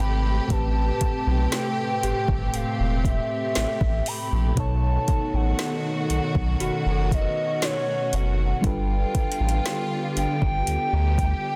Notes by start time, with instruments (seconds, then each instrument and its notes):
Already playing: fm electric piano C3 A3 C4 G4 B4, string section C3 A3 G4 B4, synth bell G4
0.00 sub bass G#1, soft synth lead B5
0.48 sub bass A1, fm electric piano A2 A3 C4 G4, string section C4, synth bell B4, soft synth lead A5, kick, closed hi-hat
0.53 fm electric piano B4
1.01 kick, closed hi-hat
1.26 sub bass B1
1.52 soft synth lead G5, snare, closed hi-hat
2.03 sub bass G1, synth bell G4, closed hi-hat
2.28 sub bass G1, kick
2.49 soft synth lead G5
2.54 sub bass E1, soft synth lead F5, closed hi-hat
2.80 sub bass E1
3.05 soft synth lead E5, kick, closed hi-hat
3.55 sub bass A1, snare, closed hi-hat
3.81 sub bass A1, kick
4.06 soft synth lead B5, open hi-hat
4.32 sub bass A#1
4.55 sub bass B1, fm electric piano B2 B3 D#4 A4, string section D#3 B3 F#4, kick, closed hi-hat
4.59 fm electric piano C#5, soft synth lead A5
5.08 kick, closed hi-hat
5.33 sub bass A1, soft synth lead F#5
5.59 snare, closed hi-hat
6.10 sub bass B1, closed hi-hat
6.35 sub bass B1, kick
6.60 sub bass F#1, string section C#4, synth bell F#4, soft synth lead F#5, closed hi-hat
6.86 sub bass F#1
6.91 synth bell A4
7.11 soft synth lead D#5, kick, closed hi-hat
7.21 synth bell B4
7.62 soft synth lead C#5, snare, closed hi-hat
8.13 sub bass F#1, soft synth lead F#5, closed hi-hat
8.62 sub bass G1, string section D3 G3 B3 F4, fm electric piano G3 D4 F4 A4, soft synth lead G5, kick, closed hi-hat
8.67 fm electric piano B4
9.15 kick, closed hi-hat
9.32 closed hi-hat
9.40 sub bass A1
9.49 closed hi-hat
9.66 snare, closed hi-hat
10.16 sub bass G1, soft synth lead G5, closed hi-hat
10.42 sub bass G1, kick
10.67 sub bass D2, string section G4, closed hi-hat
10.93 sub bass D2
11.18 kick, closed hi-hat